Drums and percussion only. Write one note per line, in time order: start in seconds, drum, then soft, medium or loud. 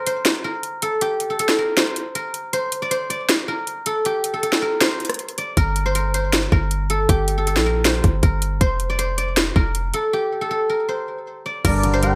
0.07 closed hi-hat medium
0.25 snare loud
0.25 closed hi-hat medium
0.63 closed hi-hat medium
0.82 closed hi-hat medium
1.01 closed hi-hat medium
1.20 closed hi-hat medium
1.39 closed hi-hat medium
1.49 snare medium
1.77 snare loud
1.77 closed hi-hat medium
1.96 closed hi-hat medium
2.15 closed hi-hat medium
2.34 closed hi-hat medium
2.53 closed hi-hat medium
2.72 closed hi-hat medium
2.91 closed hi-hat medium
3.10 closed hi-hat medium
3.29 snare loud
3.29 closed hi-hat medium
3.67 closed hi-hat medium
3.86 closed hi-hat medium
4.05 closed hi-hat medium
4.24 closed hi-hat medium
4.43 closed hi-hat medium
4.53 snare loud
4.81 snare loud
4.81 closed hi-hat medium
5.00 closed hi-hat soft
5.05 closed hi-hat medium
5.10 cross-stick medium
5.10 closed hi-hat medium
5.14 closed hi-hat medium
5.19 closed hi-hat medium
5.29 closed hi-hat soft
5.38 closed hi-hat medium
5.57 kick loud
5.57 closed hi-hat medium
5.76 closed hi-hat medium
5.95 closed hi-hat medium
6.14 closed hi-hat medium
6.33 snare loud
6.33 closed hi-hat medium
6.52 kick medium
6.71 closed hi-hat medium
6.90 closed hi-hat medium
7.09 kick loud
7.09 closed hi-hat medium
7.28 closed hi-hat medium
7.47 closed hi-hat medium
7.56 snare medium
7.85 snare loud
7.85 closed hi-hat medium
8.04 kick medium
8.04 closed hi-hat medium
8.23 kick loud
8.23 closed hi-hat medium
8.42 closed hi-hat medium
8.61 kick loud
8.61 closed hi-hat medium
8.80 closed hi-hat medium
8.99 closed hi-hat medium
9.18 closed hi-hat medium
9.37 snare loud
9.37 closed hi-hat medium
9.56 kick medium
9.75 closed hi-hat medium
9.94 closed hi-hat medium
11.65 kick loud
11.65 closed hi-hat medium
11.65 crash loud
11.83 closed hi-hat medium
12.03 closed hi-hat medium